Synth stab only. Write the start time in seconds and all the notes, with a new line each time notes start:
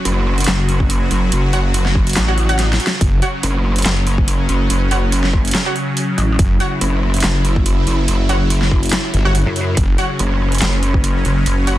1.53 F#4 C#5 F#5
2.28 F#4 C#5 F#5
2.49 F#4 C#5 F#5
3.22 F#4 C#5 F#5
4.91 F#4 C#5 F#5
5.66 F#4 C#5 F#5
6.60 F#4 C#5 F#5
8.29 F#4 C#5 F#5
9.25 F#4 C#5 F#5
9.98 F#4 C#5 F#5
11.67 F#4 C#5 F#5